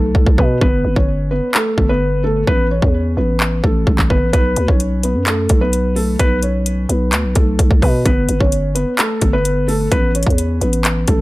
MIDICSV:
0, 0, Header, 1, 4, 480
1, 0, Start_track
1, 0, Tempo, 465116
1, 634, Time_signature, 4, 2, 24, 8
1, 11572, End_track
2, 0, Start_track
2, 0, Title_t, "Felt piano"
2, 0, Program_c, 0, 0
2, 0, Note_on_c, 0, 57, 59
2, 0, Note_on_c, 0, 69, 70
2, 363, Note_off_c, 0, 69, 0
2, 367, Note_off_c, 0, 57, 0
2, 399, Note_on_c, 0, 71, 81
2, 407, Note_on_c, 0, 59, 67
2, 588, Note_off_c, 0, 71, 0
2, 594, Note_off_c, 0, 59, 0
2, 634, Note_on_c, 0, 71, 92
2, 642, Note_on_c, 0, 59, 78
2, 972, Note_off_c, 0, 71, 0
2, 976, Note_off_c, 0, 59, 0
2, 993, Note_on_c, 0, 73, 74
2, 1002, Note_on_c, 0, 61, 65
2, 1332, Note_off_c, 0, 73, 0
2, 1336, Note_off_c, 0, 61, 0
2, 1351, Note_on_c, 0, 71, 79
2, 1360, Note_on_c, 0, 59, 60
2, 1544, Note_off_c, 0, 71, 0
2, 1549, Note_off_c, 0, 59, 0
2, 1599, Note_on_c, 0, 69, 85
2, 1607, Note_on_c, 0, 57, 70
2, 1935, Note_off_c, 0, 69, 0
2, 1939, Note_off_c, 0, 57, 0
2, 1954, Note_on_c, 0, 71, 92
2, 1962, Note_on_c, 0, 59, 68
2, 2292, Note_off_c, 0, 71, 0
2, 2296, Note_off_c, 0, 59, 0
2, 2309, Note_on_c, 0, 69, 84
2, 2317, Note_on_c, 0, 57, 63
2, 2503, Note_off_c, 0, 69, 0
2, 2507, Note_off_c, 0, 57, 0
2, 2555, Note_on_c, 0, 71, 108
2, 2562, Note_on_c, 0, 59, 76
2, 2746, Note_off_c, 0, 71, 0
2, 2751, Note_off_c, 0, 59, 0
2, 2795, Note_on_c, 0, 73, 72
2, 2803, Note_on_c, 0, 61, 56
2, 3246, Note_off_c, 0, 73, 0
2, 3250, Note_off_c, 0, 61, 0
2, 3276, Note_on_c, 0, 71, 69
2, 3284, Note_on_c, 0, 59, 56
2, 3726, Note_off_c, 0, 71, 0
2, 3730, Note_off_c, 0, 59, 0
2, 3754, Note_on_c, 0, 69, 72
2, 3762, Note_on_c, 0, 57, 55
2, 4205, Note_off_c, 0, 69, 0
2, 4209, Note_off_c, 0, 57, 0
2, 4233, Note_on_c, 0, 71, 92
2, 4241, Note_on_c, 0, 59, 64
2, 4425, Note_off_c, 0, 71, 0
2, 4430, Note_off_c, 0, 59, 0
2, 4470, Note_on_c, 0, 71, 110
2, 4479, Note_on_c, 0, 59, 73
2, 4810, Note_off_c, 0, 71, 0
2, 4815, Note_off_c, 0, 59, 0
2, 4834, Note_on_c, 0, 73, 81
2, 4843, Note_on_c, 0, 61, 64
2, 5172, Note_off_c, 0, 73, 0
2, 5177, Note_off_c, 0, 61, 0
2, 5198, Note_on_c, 0, 71, 72
2, 5206, Note_on_c, 0, 59, 62
2, 5388, Note_off_c, 0, 71, 0
2, 5393, Note_off_c, 0, 59, 0
2, 5433, Note_on_c, 0, 69, 82
2, 5441, Note_on_c, 0, 57, 68
2, 5771, Note_off_c, 0, 69, 0
2, 5776, Note_off_c, 0, 57, 0
2, 5792, Note_on_c, 0, 71, 83
2, 5800, Note_on_c, 0, 59, 63
2, 6131, Note_off_c, 0, 71, 0
2, 6135, Note_off_c, 0, 59, 0
2, 6149, Note_on_c, 0, 69, 82
2, 6158, Note_on_c, 0, 57, 68
2, 6343, Note_off_c, 0, 69, 0
2, 6348, Note_off_c, 0, 57, 0
2, 6394, Note_on_c, 0, 71, 111
2, 6402, Note_on_c, 0, 59, 77
2, 6586, Note_off_c, 0, 71, 0
2, 6591, Note_off_c, 0, 59, 0
2, 6634, Note_on_c, 0, 73, 73
2, 6642, Note_on_c, 0, 61, 55
2, 7085, Note_off_c, 0, 73, 0
2, 7089, Note_off_c, 0, 61, 0
2, 7113, Note_on_c, 0, 71, 66
2, 7121, Note_on_c, 0, 59, 56
2, 7564, Note_off_c, 0, 71, 0
2, 7569, Note_off_c, 0, 59, 0
2, 7590, Note_on_c, 0, 69, 67
2, 7598, Note_on_c, 0, 57, 57
2, 8043, Note_off_c, 0, 69, 0
2, 8047, Note_off_c, 0, 57, 0
2, 8078, Note_on_c, 0, 71, 85
2, 8087, Note_on_c, 0, 59, 68
2, 8268, Note_off_c, 0, 71, 0
2, 8273, Note_off_c, 0, 59, 0
2, 8313, Note_on_c, 0, 71, 95
2, 8321, Note_on_c, 0, 59, 80
2, 8652, Note_off_c, 0, 71, 0
2, 8656, Note_off_c, 0, 59, 0
2, 8674, Note_on_c, 0, 73, 76
2, 8682, Note_on_c, 0, 61, 66
2, 9012, Note_off_c, 0, 73, 0
2, 9016, Note_off_c, 0, 61, 0
2, 9031, Note_on_c, 0, 71, 76
2, 9039, Note_on_c, 0, 59, 61
2, 9224, Note_off_c, 0, 71, 0
2, 9228, Note_off_c, 0, 59, 0
2, 9278, Note_on_c, 0, 69, 88
2, 9287, Note_on_c, 0, 57, 70
2, 9614, Note_off_c, 0, 69, 0
2, 9619, Note_off_c, 0, 57, 0
2, 9631, Note_on_c, 0, 71, 91
2, 9639, Note_on_c, 0, 59, 68
2, 9971, Note_off_c, 0, 71, 0
2, 9975, Note_off_c, 0, 59, 0
2, 9989, Note_on_c, 0, 69, 85
2, 9997, Note_on_c, 0, 57, 63
2, 10183, Note_off_c, 0, 69, 0
2, 10187, Note_off_c, 0, 57, 0
2, 10234, Note_on_c, 0, 71, 109
2, 10242, Note_on_c, 0, 59, 82
2, 10426, Note_off_c, 0, 71, 0
2, 10431, Note_off_c, 0, 59, 0
2, 10473, Note_on_c, 0, 73, 70
2, 10481, Note_on_c, 0, 61, 56
2, 10925, Note_off_c, 0, 73, 0
2, 10929, Note_off_c, 0, 61, 0
2, 10955, Note_on_c, 0, 71, 70
2, 10964, Note_on_c, 0, 59, 57
2, 11406, Note_off_c, 0, 71, 0
2, 11410, Note_off_c, 0, 59, 0
2, 11434, Note_on_c, 0, 69, 74
2, 11441, Note_on_c, 0, 57, 54
2, 11572, Note_off_c, 0, 57, 0
2, 11572, Note_off_c, 0, 69, 0
2, 11572, End_track
3, 0, Start_track
3, 0, Title_t, "808-style bass"
3, 0, Program_c, 1, 38
3, 0, Note_on_c, 1, 35, 110
3, 144, Note_off_c, 1, 35, 0
3, 153, Note_on_c, 1, 35, 104
3, 268, Note_off_c, 1, 35, 0
3, 273, Note_on_c, 1, 35, 99
3, 388, Note_off_c, 1, 35, 0
3, 394, Note_on_c, 1, 47, 107
3, 624, Note_off_c, 1, 47, 0
3, 634, Note_on_c, 1, 31, 109
3, 864, Note_off_c, 1, 31, 0
3, 873, Note_on_c, 1, 31, 105
3, 989, Note_off_c, 1, 31, 0
3, 995, Note_on_c, 1, 31, 97
3, 1455, Note_off_c, 1, 31, 0
3, 1834, Note_on_c, 1, 31, 111
3, 2525, Note_off_c, 1, 31, 0
3, 2553, Note_on_c, 1, 33, 115
3, 2899, Note_off_c, 1, 33, 0
3, 2914, Note_on_c, 1, 40, 102
3, 3259, Note_off_c, 1, 40, 0
3, 3272, Note_on_c, 1, 33, 101
3, 3734, Note_off_c, 1, 33, 0
3, 3753, Note_on_c, 1, 33, 109
3, 3984, Note_off_c, 1, 33, 0
3, 3993, Note_on_c, 1, 33, 104
3, 4233, Note_on_c, 1, 31, 105
3, 4249, Note_off_c, 1, 33, 0
3, 4352, Note_on_c, 1, 33, 100
3, 4368, Note_off_c, 1, 31, 0
3, 4467, Note_off_c, 1, 33, 0
3, 4472, Note_on_c, 1, 35, 110
3, 4703, Note_off_c, 1, 35, 0
3, 4713, Note_on_c, 1, 38, 104
3, 4828, Note_off_c, 1, 38, 0
3, 4833, Note_on_c, 1, 35, 105
3, 5312, Note_on_c, 1, 42, 103
3, 5328, Note_off_c, 1, 35, 0
3, 5655, Note_off_c, 1, 42, 0
3, 5673, Note_on_c, 1, 35, 112
3, 6365, Note_off_c, 1, 35, 0
3, 6393, Note_on_c, 1, 35, 111
3, 7085, Note_off_c, 1, 35, 0
3, 7112, Note_on_c, 1, 35, 107
3, 7352, Note_on_c, 1, 38, 103
3, 7368, Note_off_c, 1, 35, 0
3, 7473, Note_on_c, 1, 35, 102
3, 7488, Note_off_c, 1, 38, 0
3, 7587, Note_off_c, 1, 35, 0
3, 7594, Note_on_c, 1, 35, 112
3, 7824, Note_off_c, 1, 35, 0
3, 7833, Note_on_c, 1, 35, 104
3, 7948, Note_off_c, 1, 35, 0
3, 7953, Note_on_c, 1, 35, 103
3, 8068, Note_off_c, 1, 35, 0
3, 8074, Note_on_c, 1, 47, 108
3, 8304, Note_off_c, 1, 47, 0
3, 8313, Note_on_c, 1, 31, 111
3, 8544, Note_off_c, 1, 31, 0
3, 8554, Note_on_c, 1, 31, 104
3, 8669, Note_off_c, 1, 31, 0
3, 8673, Note_on_c, 1, 31, 100
3, 9134, Note_off_c, 1, 31, 0
3, 9513, Note_on_c, 1, 31, 110
3, 10205, Note_off_c, 1, 31, 0
3, 10234, Note_on_c, 1, 33, 112
3, 10579, Note_off_c, 1, 33, 0
3, 10594, Note_on_c, 1, 40, 100
3, 10939, Note_off_c, 1, 40, 0
3, 10953, Note_on_c, 1, 33, 105
3, 11414, Note_off_c, 1, 33, 0
3, 11434, Note_on_c, 1, 33, 113
3, 11572, Note_off_c, 1, 33, 0
3, 11572, End_track
4, 0, Start_track
4, 0, Title_t, "Drums"
4, 153, Note_on_c, 9, 36, 92
4, 256, Note_off_c, 9, 36, 0
4, 273, Note_on_c, 9, 36, 91
4, 377, Note_off_c, 9, 36, 0
4, 394, Note_on_c, 9, 36, 94
4, 497, Note_off_c, 9, 36, 0
4, 634, Note_on_c, 9, 36, 119
4, 737, Note_off_c, 9, 36, 0
4, 995, Note_on_c, 9, 36, 92
4, 1098, Note_off_c, 9, 36, 0
4, 1594, Note_on_c, 9, 39, 112
4, 1697, Note_off_c, 9, 39, 0
4, 1834, Note_on_c, 9, 36, 89
4, 1937, Note_off_c, 9, 36, 0
4, 2554, Note_on_c, 9, 36, 118
4, 2657, Note_off_c, 9, 36, 0
4, 2914, Note_on_c, 9, 36, 87
4, 3017, Note_off_c, 9, 36, 0
4, 3513, Note_on_c, 9, 39, 109
4, 3616, Note_off_c, 9, 39, 0
4, 3753, Note_on_c, 9, 36, 91
4, 3856, Note_off_c, 9, 36, 0
4, 3993, Note_on_c, 9, 36, 94
4, 4096, Note_off_c, 9, 36, 0
4, 4113, Note_on_c, 9, 36, 90
4, 4113, Note_on_c, 9, 39, 68
4, 4216, Note_off_c, 9, 36, 0
4, 4216, Note_off_c, 9, 39, 0
4, 4233, Note_on_c, 9, 36, 91
4, 4336, Note_off_c, 9, 36, 0
4, 4473, Note_on_c, 9, 36, 119
4, 4473, Note_on_c, 9, 42, 82
4, 4576, Note_off_c, 9, 36, 0
4, 4576, Note_off_c, 9, 42, 0
4, 4710, Note_on_c, 9, 42, 73
4, 4814, Note_off_c, 9, 42, 0
4, 4833, Note_on_c, 9, 36, 89
4, 4937, Note_off_c, 9, 36, 0
4, 4953, Note_on_c, 9, 42, 83
4, 5056, Note_off_c, 9, 42, 0
4, 5196, Note_on_c, 9, 42, 72
4, 5299, Note_off_c, 9, 42, 0
4, 5433, Note_on_c, 9, 39, 110
4, 5435, Note_on_c, 9, 42, 69
4, 5536, Note_off_c, 9, 39, 0
4, 5538, Note_off_c, 9, 42, 0
4, 5669, Note_on_c, 9, 42, 72
4, 5673, Note_on_c, 9, 36, 92
4, 5772, Note_off_c, 9, 42, 0
4, 5777, Note_off_c, 9, 36, 0
4, 5914, Note_on_c, 9, 42, 87
4, 6017, Note_off_c, 9, 42, 0
4, 6155, Note_on_c, 9, 46, 44
4, 6258, Note_off_c, 9, 46, 0
4, 6393, Note_on_c, 9, 36, 120
4, 6393, Note_on_c, 9, 42, 82
4, 6496, Note_off_c, 9, 42, 0
4, 6497, Note_off_c, 9, 36, 0
4, 6631, Note_on_c, 9, 42, 70
4, 6734, Note_off_c, 9, 42, 0
4, 6874, Note_on_c, 9, 42, 85
4, 6977, Note_off_c, 9, 42, 0
4, 7116, Note_on_c, 9, 42, 68
4, 7219, Note_off_c, 9, 42, 0
4, 7353, Note_on_c, 9, 39, 113
4, 7355, Note_on_c, 9, 42, 71
4, 7456, Note_off_c, 9, 39, 0
4, 7458, Note_off_c, 9, 42, 0
4, 7590, Note_on_c, 9, 42, 70
4, 7593, Note_on_c, 9, 36, 93
4, 7693, Note_off_c, 9, 42, 0
4, 7697, Note_off_c, 9, 36, 0
4, 7833, Note_on_c, 9, 36, 96
4, 7834, Note_on_c, 9, 42, 86
4, 7936, Note_off_c, 9, 36, 0
4, 7937, Note_off_c, 9, 42, 0
4, 7953, Note_on_c, 9, 36, 93
4, 8056, Note_off_c, 9, 36, 0
4, 8073, Note_on_c, 9, 36, 87
4, 8076, Note_on_c, 9, 46, 45
4, 8177, Note_off_c, 9, 36, 0
4, 8179, Note_off_c, 9, 46, 0
4, 8313, Note_on_c, 9, 36, 122
4, 8313, Note_on_c, 9, 42, 82
4, 8416, Note_off_c, 9, 42, 0
4, 8417, Note_off_c, 9, 36, 0
4, 8551, Note_on_c, 9, 42, 72
4, 8654, Note_off_c, 9, 42, 0
4, 8674, Note_on_c, 9, 36, 89
4, 8777, Note_off_c, 9, 36, 0
4, 8795, Note_on_c, 9, 42, 83
4, 8898, Note_off_c, 9, 42, 0
4, 9036, Note_on_c, 9, 42, 71
4, 9139, Note_off_c, 9, 42, 0
4, 9273, Note_on_c, 9, 39, 112
4, 9275, Note_on_c, 9, 42, 69
4, 9377, Note_off_c, 9, 39, 0
4, 9379, Note_off_c, 9, 42, 0
4, 9510, Note_on_c, 9, 42, 70
4, 9513, Note_on_c, 9, 36, 91
4, 9613, Note_off_c, 9, 42, 0
4, 9617, Note_off_c, 9, 36, 0
4, 9754, Note_on_c, 9, 42, 87
4, 9857, Note_off_c, 9, 42, 0
4, 9995, Note_on_c, 9, 46, 44
4, 10098, Note_off_c, 9, 46, 0
4, 10233, Note_on_c, 9, 36, 121
4, 10233, Note_on_c, 9, 42, 80
4, 10336, Note_off_c, 9, 42, 0
4, 10337, Note_off_c, 9, 36, 0
4, 10474, Note_on_c, 9, 42, 73
4, 10554, Note_off_c, 9, 42, 0
4, 10554, Note_on_c, 9, 42, 58
4, 10594, Note_on_c, 9, 36, 90
4, 10634, Note_off_c, 9, 42, 0
4, 10634, Note_on_c, 9, 42, 42
4, 10697, Note_off_c, 9, 36, 0
4, 10714, Note_off_c, 9, 42, 0
4, 10714, Note_on_c, 9, 42, 87
4, 10818, Note_off_c, 9, 42, 0
4, 10954, Note_on_c, 9, 42, 59
4, 11057, Note_off_c, 9, 42, 0
4, 11074, Note_on_c, 9, 42, 62
4, 11177, Note_off_c, 9, 42, 0
4, 11193, Note_on_c, 9, 39, 113
4, 11195, Note_on_c, 9, 42, 70
4, 11297, Note_off_c, 9, 39, 0
4, 11299, Note_off_c, 9, 42, 0
4, 11430, Note_on_c, 9, 42, 72
4, 11434, Note_on_c, 9, 36, 89
4, 11533, Note_off_c, 9, 42, 0
4, 11537, Note_off_c, 9, 36, 0
4, 11572, End_track
0, 0, End_of_file